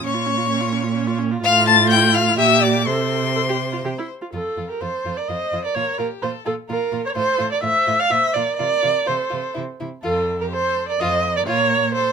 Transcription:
0.02 cello A#2, viola C#4, violin C#5 C#6
0.14 viola F4
0.26 viola C#4
0.38 viola F4
0.49 viola C#4
0.61 viola F4
0.73 viola C#4
0.84 viola F4
0.95 viola C#4
1.07 viola F4
1.19 viola C#4
1.31 viola F4
1.43 cello A2, viola F4, violin F5 F6
1.67 violin A5 A6
1.89 violin G5 G6
2.14 violin F5 F6
2.38 cello A#2, viola G4, violin E5 E6
2.62 violin D5 D6
2.87 cello C3, viola A4, violin C5 C6
3.35 viola A4
3.49 viola G4
3.72 viola F4
3.84 cello C3, viola G4
3.99 viola E4
4.22 viola F4
4.33 cello F2, violin F4, viola A4
4.57 cello F2, violin F4
4.69 violin G4, viola A#4
4.81 cello F2, violin F4 A4, viola C5
5.05 cello F2, violin F4
5.17 violin A#4, viola D5
5.28 cello F2, violin F4 C5, viola D#5
5.52 cello F2, violin F4
5.64 violin A#4, viola D5
5.75 cello A#2, violin F4 A#4, viola C#5
5.99 cello A#2, violin F4 G4, viola A#4
6.22 cello A#2, violin F4 A4, viola C5
6.45 cello A#2, violin F4, viola A4
6.69 cello A#2, violin F4, viola A#4
6.92 cello A#2, violin F4
7.04 violin A#4, viola C#5
7.15 cello A2, violin F4 A4, viola C5
7.38 cello A2, violin F4
7.52 violin A#4, viola D5
7.61 cello A2, violin F4 C5, viola E5
7.86 cello A2, violin F4
7.99 violin D5, viola F5
8.10 cello A#2, violin F4 C5, viola E5
8.34 cello A#2, violin F4 A#4, viola D5
8.57 cello C3, violin F4 A#4, viola D5
8.82 cello C3, violin F4
9.06 cello C3, violin F4 A4, viola C5
9.30 cello C3, violin F4
9.54 cello C3, violin E4
9.80 cello C3, violin E4
10.03 cello F2, violin F4, viola A4
10.40 violin G4, viola A#4
10.52 violin A4, viola C5
10.88 violin A#4, viola D5
11.00 cello F2, violin F4 C5, viola D#5
11.37 violin A#4, viola D5
11.46 cello A#2, violin F4 A#4, viola C#5
11.95 violin A4, viola C5

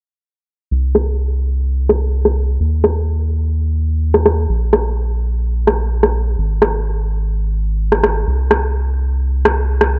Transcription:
0.71 analog synth bass C2
0.95 cross-stick
1.89 cross-stick
2.25 cross-stick
2.60 analog synth bass D#2
2.84 cross-stick
4.14 cross-stick
4.26 cross-stick
4.49 analog synth bass A#1
4.73 cross-stick
5.67 cross-stick
6.03 cross-stick
6.38 analog synth bass G#1
6.62 cross-stick
7.92 cross-stick
8.04 cross-stick
8.27 analog synth bass C2
8.51 cross-stick
9.45 cross-stick
9.81 cross-stick

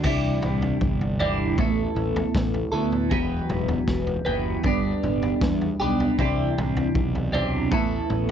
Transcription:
0.03 fingered electric bass C2, clean electric guitar C3 E3 G3 D4 E4, kick, floor tom, crash
0.42 fingered electric bass C2, floor tom, mid tom
0.62 floor tom
0.81 fingered electric bass G1, kick
1.01 floor tom
1.20 clean electric guitar C3 E3 G3 D4 E4, floor tom
1.58 fingered electric bass A1, clean electric guitar A3 B3 E4 A4, kick, floor tom
1.95 fingered electric bass A1, mid tom
2.16 floor tom
2.34 fingered electric bass A1, kick, snare, mid tom
2.54 floor tom
2.72 fingered electric bass D2, clean electric guitar A3 B3 E4 A4
2.92 mid tom
3.10 fingered electric bass E1, clean electric guitar E3 F#3 B3 G4 B4, kick, floor tom
3.50 fingered electric bass E1, floor tom, mid tom
3.68 floor tom
3.88 fingered electric bass E1, kick, snare
4.07 floor tom
4.25 fingered electric bass F#1, clean electric guitar E3 F#3 B3 G4 B4, floor tom
4.63 fingered electric bass G1, clean electric guitar G3 B3 D4 G4, kick, floor tom
5.03 fingered electric bass G1, mid tom
5.23 floor tom
5.41 fingered electric bass E2, kick, snare
5.61 floor tom
5.80 fingered electric bass B1, clean electric guitar G3 B3 D4 G4
6.00 floor tom
6.18 fingered electric bass C2, clean electric guitar C3 E3 C4 D4 G4, kick, floor tom
6.58 fingered electric bass C2, floor tom, mid tom
6.77 floor tom
6.94 fingered electric bass B1, kick
7.15 floor tom
7.32 clean electric guitar C3 E3 C4 D4 G4, floor tom
7.71 fingered electric bass A1, clean electric guitar A3 B3 E4 A4, kick, floor tom
8.10 fingered electric bass A1, mid tom

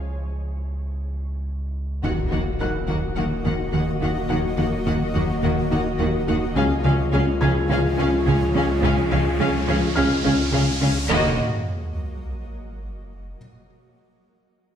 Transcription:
Already playing: sub bass C#2, felt piano C#6
2.03 sub bass D#1, double bass section D#2, analog synth bass D#2, cello section D#3, synth arpeggio sound D#3, ambient pad F#3 A#3 F#4 D#5, viola section A#3, french horn section A#3 F#4, violin section F#4 F#5, impact
2.31 double bass section D#2, analog synth bass D#2, cello section D#3, synth arpeggio sound F#3, viola section A#3, violin section F#4 F#5
2.60 double bass section D#2, cello section D#3, analog synth bass D#3, synth arpeggio sound A#3, viola section A#3, violin section F#4 F#5, felt piano F#6
2.88 analog synth bass D#2, double bass section D#2, cello section D#3, synth arpeggio sound F#3, viola section A#3, violin section F#4 F#5
3.15 analog synth bass D#2, double bass section D#2, synth arpeggio sound D#3, cello section D#3, viola section A#3, violin section F#4 F#5
3.44 double bass section D#2, cello section D#3, analog synth bass D#3, viola section A#3, synth arpeggio sound A#3, violin section F#4 F#5
3.72 analog synth bass D#2, double bass section D#2, cello section D#3, viola section A#3, violin section F#4 F#5
4.00 double bass section D#2, cello section D#3, analog synth bass D#3, viola section A#3, violin section F#4 F#5
4.29 analog synth bass D#2, double bass section D#2, cello section D#3, synth arpeggio sound D#3, viola section A#3, violin section F#4 F#5
4.58 analog synth bass D#2, double bass section D#2, cello section D#3, synth arpeggio sound F#3, viola section A#3, violin section F#4 F#5
4.86 double bass section D#2, cello section D#3, analog synth bass D#3, synth arpeggio sound A#3, viola section A#3, violin section F#4 F#5
5.14 double bass section D#2, analog synth bass D#2, cello section D#3, synth arpeggio sound F#3, viola section A#3, violin section F#4 F#5
5.42 double bass section D#2, analog synth bass D#2, cello section D#3, synth arpeggio sound D#3, viola section A#3, violin section F#4 F#5
5.71 double bass section D#2, cello section D#3, analog synth bass D#3, synth arpeggio sound A#3, viola section A#3, violin section F#4 F#5
5.99 double bass section D#2, analog synth bass D#2, cello section D#3, viola section A#3, violin section F#4 F#5
6.27 double bass section D#2, cello section D#3, analog synth bass D#3, viola section A#3, violin section F#4 F#5
6.55 sub bass C#2, analog synth bass C#2, double bass section C#2, synth arpeggio sound C#3, cello section C#3, ambient pad F3 G#3 G#4 C#5, french horn section G#3 F4, viola section C#4, violin section G#4 F5, riser
6.83 double bass section C#2, analog synth bass C#2, cello section C#3, synth arpeggio sound F3, viola section C#4, violin section G#4 F5
7.12 double bass section C#2, cello section C#3, analog synth bass C#3, synth arpeggio sound G#3, viola section C#4, violin section G#4 F5
7.41 analog synth bass C#2, double bass section C#2, cello section C#3, synth arpeggio sound F3, viola section C#4, violin section G#4 F5, felt piano G#6
7.69 analog synth bass C#2, double bass section C#2, cello section C#3, synth arpeggio sound C#3, viola section C#4, violin section G#4 F5
7.97 double bass section C#2, cello section C#3, analog synth bass C#3, synth arpeggio sound G#3, viola section C#4, violin section G#4 F5
8.26 analog synth bass C#2, double bass section C#2, cello section C#3, viola section C#4, violin section G#4 F5
8.54 double bass section C#2, cello section C#3, analog synth bass C#3, viola section C#4, violin section G#4 F5
8.82 analog synth bass C#2, double bass section C#2, cello section C#3, synth arpeggio sound C#3, viola section C#4, violin section G#4 F5
9.11 analog synth bass C#2, double bass section C#2, cello section C#3, synth arpeggio sound F3, viola section C#4, violin section G#4 F5
9.39 double bass section C#2, cello section C#3, analog synth bass C#3, synth arpeggio sound G#3, viola section C#4, violin section G#4 F5
9.68 double bass section C#2, analog synth bass C#2, cello section C#3, synth arpeggio sound F3, viola section C#4, violin section G#4 F5
9.95 double bass section C#2, analog synth bass C#2, cello section C#3, synth arpeggio sound C#3, viola section C#4, violin section G#4 F5, felt piano F6
10.24 double bass section C#2, cello section C#3, analog synth bass C#3, synth arpeggio sound G#3, viola section C#4, violin section G#4 F5
10.52 double bass section C#2, analog synth bass C#2, cello section C#3, viola section C#4, violin section G#4 F5
10.81 double bass section C#2, cello section C#3, analog synth bass C#3, viola section C#4, violin section G#4 F5
11.09 sub bass D#1, double bass section D#2, cello section D#3, viola section A#3, french horn section A#3 F#4, violin section F#4 D#5, sub drop

